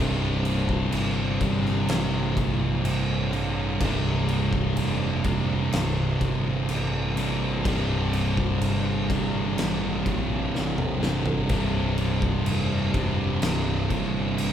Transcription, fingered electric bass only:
0.00 0.89 C1 loud
0.93 1.85 G1 loud
1.89 2.33 A1 loud
2.37 2.81 A#1 medium
2.85 3.77 A1 loud
3.81 4.73 C1 medium
4.76 5.69 F1 loud
5.73 6.17 C1 loud
6.21 6.65 G1 medium
6.69 7.61 A1 medium
7.66 8.58 C1 loud
8.61 9.54 G1 loud
9.57 10.02 A1 loud
10.06 10.50 A#1 medium
10.53 11.46 A1 medium
11.50 12.43 C1 loud
12.46 13.38 F1 medium
13.42 13.87 C1 medium
13.90 14.35 G1 medium
14.38 14.53 A1 medium

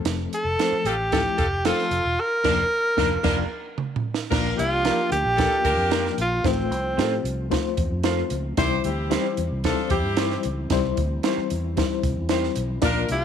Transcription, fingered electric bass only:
0.05 0.26 F1 medium
0.44 0.55 F1 medium
0.72 muted fingered electric bass stroke soft
0.85 1.26 A1 medium
1.39 1.70 F1 medium
1.91 2.02 F1 medium
2.05 2.16 E1 medium
2.45 2.63 F1 loud
2.98 3.16 F1 loud
3.25 3.43 F1 loud
4.32 4.52 A#1 loud
4.59 4.90 C2 medium
5.12 5.22 D2 medium
5.25 5.46 A#1 medium
5.65 5.76 D2 medium
5.77 6.08 F2 medium
6.18 6.39 A#1 medium
6.45 6.71 A1 medium
6.71 6.99 C2 medium
6.98 7.18 A2 medium
7.24 7.55 C2 medium
7.78 7.88 E2 medium
7.91 8.22 F2 medium
8.31 8.52 C#2 loud
8.58 8.78 C2 loud
8.85 9.15 D2 loud
9.38 9.48 E2 medium
9.51 9.72 C2 medium
9.91 10.05 E2 medium
10.05 10.36 G2 medium
10.45 10.65 C#2 medium
10.71 10.91 C2 loud
10.98 11.18 D2 medium
11.38 muted fingered electric bass stroke soft
11.52 11.82 E2 medium
12.03 12.14 C2 medium
12.17 12.48 E2 medium
12.57 12.77 B1 medium
12.83 13.04 A#1 loud
13.10 13.25 C2 medium

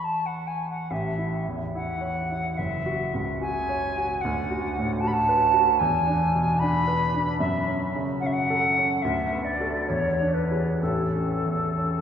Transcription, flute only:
0.04 0.27 A5 medium
0.26 0.48 F#5 soft
0.47 0.69 G#5 soft
0.70 0.92 F#5 soft
0.91 1.47 E5 medium
1.75 2.59 F#5 medium
2.57 3.40 E5 medium
3.40 4.22 G#5 medium
4.21 5.02 F#5 medium
5.00 5.08 A5 medium
5.07 5.14 B5 medium
5.12 5.80 A5 medium
5.78 6.60 G#5 medium
6.59 7.38 B5 medium
7.38 7.91 E5 medium
8.20 8.28 F#5 medium
8.26 8.34 E5 medium
8.33 9.03 F#5 medium
9.02 9.46 E5 medium
9.44 9.89 D5 medium
9.87 10.35 C#5 medium
10.34 10.80 B4 soft
10.81 12.01 A4 soft

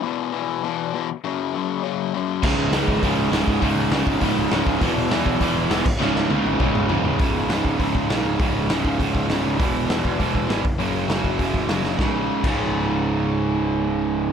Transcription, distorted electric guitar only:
2.44 2.74 C#2 medium
2.44 2.73 G#2 medium
2.44 2.73 C#3 loud
2.73 3.02 C#2 medium
2.73 3.03 G#2 medium
2.73 3.03 C#3 loud
3.03 3.33 C#2 loud
3.03 3.33 G#2 loud
3.03 3.32 C#3 loud
3.33 3.61 C#2 medium
3.33 3.62 G#2 medium
3.33 3.62 C#3 loud
3.63 3.92 C#2 loud
3.63 3.93 G#2 loud
3.63 3.92 C#3 loud
3.93 4.20 C#2 medium
3.93 4.21 G#2 loud
3.93 4.21 C#3 loud
4.21 4.50 C#2 loud
4.21 4.50 G#2 loud
4.21 4.50 C#3 loud
4.51 4.80 C#2 medium
4.51 4.80 G#2 loud
4.51 4.80 C#3 medium
4.82 5.11 E2 medium
4.82 5.11 B2 loud
4.82 5.11 E3 loud
5.12 5.40 E2 loud
5.12 5.40 B2 loud
5.12 5.40 E3 loud
5.41 5.72 E2 loud
5.41 5.71 B2 loud
5.41 5.71 E3 loud
5.72 5.86 E2 medium
5.72 5.86 B2 medium
5.72 5.86 E3 loud
6.01 6.31 C#2 loud
6.01 6.30 G#2 loud
6.01 6.30 C#3 loud
6.31 6.59 C#2 medium
6.31 6.60 G#2 loud
6.31 6.60 C#3 loud
6.61 6.90 C#2 loud
6.61 6.90 G#2 loud
6.61 6.89 C#3 loud
6.90 7.19 C#2 medium
6.90 7.20 G#2 medium
6.90 7.19 C#3 medium
7.20 7.51 C#2 medium
7.20 7.50 G#2 medium
7.20 7.51 C#3 loud
7.51 7.79 C#2 medium
7.51 7.80 G#2 loud
7.51 7.80 C#3 loud
7.80 8.10 C#2 medium
7.80 8.09 G#2 medium
7.80 8.09 C#3 medium
8.10 8.39 C#2 medium
8.10 8.40 G#2 medium
8.10 8.40 C#3 medium
8.40 8.69 C#2 medium
8.40 8.68 G#2 loud
8.40 8.68 C#3 loud
8.69 9.00 C#2 medium
8.69 9.01 G#2 loud
8.69 9.01 C#3 loud
9.01 9.30 C#2 medium
9.01 9.30 G#2 loud
9.01 9.29 C#3 medium
9.30 9.58 C#2 medium
9.30 9.59 G#2 medium
9.30 9.59 C#3 medium
9.59 9.90 E2 medium
9.59 9.89 B2 loud
9.59 9.88 E3 loud
9.90 10.19 E2 medium
9.90 10.19 B2 loud
9.90 10.20 E3 loud
10.20 10.50 E2 medium
10.20 10.49 B2 medium
10.20 10.49 E3 medium
10.50 10.64 E2 medium
10.50 10.64 B2 medium
10.50 10.64 E3 medium
10.79 11.10 F#2 medium
10.79 11.09 C#3 medium
10.79 11.09 F#3 loud
11.10 11.39 F#2 loud
11.10 11.40 C#3 loud
11.10 11.40 F#3 loud
11.40 11.69 F#2 medium
11.40 11.69 C#3 loud
11.40 11.68 F#3 medium
11.69 11.97 F#2 medium
11.69 11.99 C#3 medium
11.69 11.98 F#3 medium
11.98 12.43 C#2 medium
11.98 12.45 G#2 medium
11.98 12.47 C#3 loud
12.43 14.32 C#2 medium
12.43 14.32 G#2 loud
12.47 14.32 C#3 loud

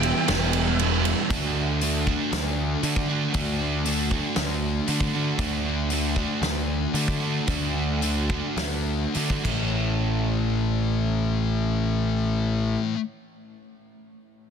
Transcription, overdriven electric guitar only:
0.00 0.27 E3 medium
0.00 0.28 G3 medium
0.00 0.29 B3 medium
0.00 0.30 E4 medium
0.28 0.78 E3 loud
0.28 0.79 G3 loud
0.28 0.80 B3 loud
0.28 0.81 E4 loud
0.79 1.29 E3 medium
0.79 1.29 G3 medium
0.79 1.30 B3 medium
0.79 1.30 E4 medium
1.31 1.81 D3 medium
1.31 1.83 A3 medium
1.31 1.84 D4 medium
1.31 1.84 F#4 loud
1.82 2.82 D3 medium
1.82 2.09 A3 medium
1.82 2.08 D4 medium
1.82 2.06 F#4 medium
2.07 2.84 A3 medium
2.07 2.84 D4 medium
2.07 2.85 F#4 medium
2.83 3.33 D3 medium
2.83 3.11 A3 medium
2.83 3.10 D4 loud
2.83 3.08 F#4 medium
3.08 3.34 A3 medium
3.08 3.35 D4 medium
3.08 3.36 F#4 medium
3.33 3.84 D3 medium
3.33 3.86 A3 loud
3.33 3.87 D4 loud
3.33 3.87 F#4 loud
3.85 4.87 D3 medium
3.85 4.13 A3 medium
3.85 4.12 D4 medium
3.85 4.10 F#4 medium
4.11 4.88 A3 medium
4.11 4.89 D4 medium
4.11 4.90 F#4 medium
4.87 5.38 D3 loud
4.87 5.16 A3 loud
4.87 5.15 D4 loud
4.87 5.13 F#4 medium
5.14 5.40 A3 medium
5.14 5.40 D4 medium
5.14 5.42 F#4 medium
5.39 5.90 D3 medium
5.39 5.91 A3 loud
5.39 5.92 D4 loud
5.39 5.93 F#4 loud
5.91 6.93 D3 medium
5.91 6.18 A3 medium
5.91 6.17 D4 medium
5.91 6.15 F#4 medium
6.16 6.95 A3 medium
6.16 6.95 D4 medium
6.16 6.95 F#4 medium
6.94 7.46 D3 medium
6.94 7.23 A3 medium
6.94 7.21 D4 medium
6.94 7.19 F#4 medium
7.20 7.47 A3 medium
7.20 7.48 D4 medium
7.20 7.49 F#4 medium
7.47 8.00 D3 medium
7.47 8.02 A3 medium
7.47 8.02 D4 medium
7.47 8.03 F#4 loud
8.01 8.58 D3 medium
8.01 8.31 A3 medium
8.01 8.30 D4 medium
8.01 8.28 F#4 medium
8.29 9.14 A3 medium
8.29 9.16 D4 medium
8.29 9.16 F#4 medium
9.14 9.44 D3 medium
9.14 9.44 A3 medium
9.14 9.46 D4 medium
9.14 9.46 F#4 loud
9.44 12.94 A2 medium
9.44 12.94 E3 medium
9.44 12.95 A3 medium
9.44 12.96 C#4 medium
9.44 12.97 E4 medium
9.48 12.98 A4 medium

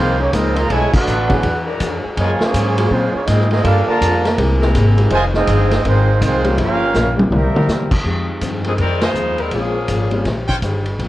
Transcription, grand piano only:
1.29 1.42 F#3 medium
1.29 1.42 B3 medium
1.29 1.42 D4 medium
1.29 1.42 E4 medium
1.29 1.43 G#4 medium
2.77 2.89 F#3 medium
2.77 2.90 A#3 medium
2.77 2.90 C#4 medium
2.77 2.90 F4 medium
2.77 2.90 G#4 medium
4.36 4.92 G#3 medium
4.36 4.93 A#3 medium
4.36 4.93 C4 medium
4.36 4.93 E4 medium
4.36 4.93 G4 medium
4.96 5.09 G#3 medium
4.96 5.09 C4 medium
4.96 5.09 D#4 medium
4.96 5.10 F4 medium
4.96 5.10 G4 medium
6.44 6.56 G3 medium
6.44 6.56 A#3 medium
6.44 6.57 C#4 medium
6.44 6.57 F4 medium
6.44 6.57 G4 medium
7.17 7.65 G3 medium
7.17 7.65 A#3 medium
7.17 7.65 C4 medium
7.17 7.65 E4 medium
7.17 7.65 G4 medium
8.03 8.59 F3 medium
8.03 8.59 G#3 medium
8.03 8.59 C4 soft
8.03 8.60 D#4 medium
8.03 8.60 G4 medium
8.65 8.77 F3 medium
8.65 8.77 G#3 medium
8.65 8.77 C4 medium
8.65 8.77 D#4 medium
8.65 8.77 A#4 medium
9.52 9.72 G#3 medium
9.52 9.73 A#3 medium
9.52 9.73 C4 medium
9.52 9.73 C#4 medium
9.52 9.73 F4 medium
10.11 10.23 G3 medium
10.11 10.24 A#3 medium
10.11 10.24 C4 medium
10.11 10.24 C#4 medium
10.11 10.24 F4 medium

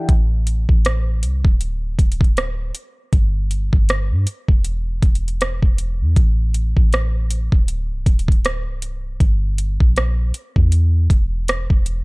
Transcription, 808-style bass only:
0.09 0.66 A1 loud
0.69 1.25 A1 loud
1.23 1.44 C2 medium
1.45 1.96 D1 medium
1.99 2.72 D1 loud
3.13 3.70 G1 loud
3.73 4.13 G1 loud
4.11 4.26 G2 medium
4.49 5.00 E1 loud
5.03 5.60 E1 medium
5.63 6.02 E1 medium
6.01 6.16 E2 loud
6.17 6.74 A1 loud
6.77 7.49 A1 medium
7.52 7.92 D1 loud
7.91 8.06 C1 medium
8.06 8.68 D1 loud
8.67 9.18 C1 medium
9.21 9.78 G1 loud
9.81 10.32 A#1 loud
10.56 11.08 E2 medium
11.10 11.68 E1 loud
11.70 12.04 E1 loud

